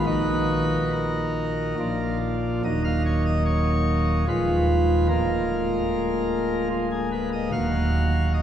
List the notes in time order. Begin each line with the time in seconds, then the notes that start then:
0.06 A#1 A#2 D#3 D#4 F#4 B4
0.94 A#4
1.79 A#1 A#2 F3 D4 F4
2.64 D#1 D#2 F#3 A#3 D#4 D#5
2.84 F5
3.06 C#5
3.26 D#5
3.46 C#5
4.27 D#1 D#2 F3 G#3 F4 B4
5.08 D1 D2 G#3 A#3 F4 A#4
6.70 F4
6.92 G#4
7.12 B4
7.33 D#5
7.52 D#1 D#2 F#3 A#3 F#4 F5
8.34 D#5